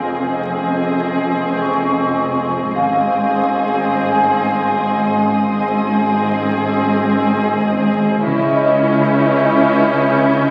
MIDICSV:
0, 0, Header, 1, 9, 480
1, 0, Start_track
1, 0, Tempo, 500000
1, 10084, End_track
2, 0, Start_track
2, 0, Title_t, "Violin section"
2, 0, Program_c, 0, 48
2, 2629, Note_on_c, 0, 87, 28
2, 2638, Note_on_c, 0, 84, 28
2, 7120, Note_off_c, 0, 84, 0
2, 7648, Note_off_c, 0, 87, 0
2, 7970, Note_on_c, 0, 91, 39
2, 7985, Note_on_c, 0, 85, 40
2, 10084, Note_off_c, 0, 85, 0
2, 10084, Note_off_c, 0, 91, 0
2, 10084, End_track
3, 0, Start_track
3, 0, Title_t, "Vibraphone"
3, 0, Program_c, 1, 11
3, 0, Control_c, 1, 64, 127
3, 0, Note_on_c, 1, 77, 22
3, 0, Note_on_c, 1, 89, 29
3, 175, Note_off_c, 1, 89, 0
3, 178, Note_off_c, 1, 77, 0
3, 1552, Note_on_c, 1, 85, 34
3, 2645, Control_c, 1, 64, 0
3, 2647, Note_on_c, 1, 77, 35
3, 2813, Control_c, 1, 64, 127
3, 3123, Note_off_c, 1, 85, 0
3, 3958, Note_on_c, 1, 80, 31
3, 4197, Note_off_c, 1, 77, 0
3, 5517, Note_off_c, 1, 80, 0
3, 7968, Control_c, 1, 64, 0
3, 8110, Control_c, 1, 64, 127
3, 8206, Note_on_c, 1, 75, 41
3, 9758, Note_off_c, 1, 75, 0
3, 10084, End_track
4, 0, Start_track
4, 0, Title_t, "Violin section"
4, 0, Program_c, 2, 48
4, 0, Note_on_c, 2, 75, 32
4, 2591, Note_off_c, 2, 75, 0
4, 2626, Note_on_c, 2, 75, 34
4, 5249, Note_off_c, 2, 75, 0
4, 5286, Note_on_c, 2, 75, 39
4, 7911, Note_off_c, 2, 75, 0
4, 7955, Note_on_c, 2, 75, 42
4, 10084, Note_off_c, 2, 75, 0
4, 10084, End_track
5, 0, Start_track
5, 0, Title_t, "Violin section"
5, 0, Program_c, 3, 48
5, 0, Note_on_c, 3, 68, 33
5, 2590, Note_off_c, 3, 68, 0
5, 2617, Note_on_c, 3, 68, 37
5, 5245, Note_off_c, 3, 68, 0
5, 5290, Note_on_c, 3, 68, 45
5, 7913, Note_off_c, 3, 68, 0
5, 7947, Note_on_c, 3, 64, 52
5, 10084, Note_off_c, 3, 64, 0
5, 10084, End_track
6, 0, Start_track
6, 0, Title_t, "Viola section"
6, 0, Program_c, 4, 48
6, 0, Note_on_c, 4, 60, 33
6, 2592, Note_off_c, 4, 60, 0
6, 2628, Note_on_c, 4, 60, 35
6, 5251, Note_off_c, 4, 60, 0
6, 5290, Note_on_c, 4, 60, 39
6, 7913, Note_off_c, 4, 60, 0
6, 7959, Note_on_c, 4, 61, 49
6, 10084, Note_off_c, 4, 61, 0
6, 10084, End_track
7, 0, Start_track
7, 0, Title_t, "Cello section"
7, 0, Program_c, 5, 48
7, 0, Note_on_c, 5, 41, 37
7, 2583, Note_off_c, 5, 41, 0
7, 2620, Note_on_c, 5, 44, 41
7, 5246, Note_off_c, 5, 44, 0
7, 5279, Note_on_c, 5, 44, 45
7, 7908, Note_off_c, 5, 44, 0
7, 7954, Note_on_c, 5, 49, 49
7, 10084, Note_off_c, 5, 49, 0
7, 10084, End_track
8, 0, Start_track
8, 0, Title_t, "Double bass section"
8, 0, Program_c, 6, 48
8, 0, Note_on_c, 6, 29, 34
8, 2591, Note_off_c, 6, 29, 0
8, 2619, Note_on_c, 6, 32, 38
8, 5246, Note_off_c, 6, 32, 0
8, 5281, Note_on_c, 6, 32, 43
8, 7909, Note_off_c, 6, 32, 0
8, 7956, Note_on_c, 6, 37, 51
8, 10084, Note_off_c, 6, 37, 0
8, 10084, End_track
9, 0, Start_track
9, 0, Title_t, "Taiko and cinematic ensemble drums"
9, 2612, Note_on_c, 9, 41, 37
9, 2708, Note_off_c, 9, 41, 0
9, 7947, Note_on_c, 9, 41, 47
9, 8043, Note_off_c, 9, 41, 0
9, 10084, End_track
0, 0, End_of_file